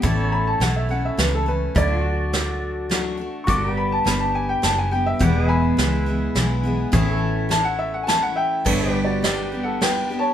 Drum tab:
CC |------|------|------|------|
RD |------|------|------|------|
HH |x-x-x-|x-x-x-|x-x-x-|x-x-x-|
SD |--o-o-|--o-o-|--o-o-|--o-o-|
BD |o-----|o-----|o-----|o-----|

CC |------|x-----|
RD |------|--x-x-|
HH |x-x-x-|------|
SD |--o-o-|--o-o-|
BD |o-----|o-----|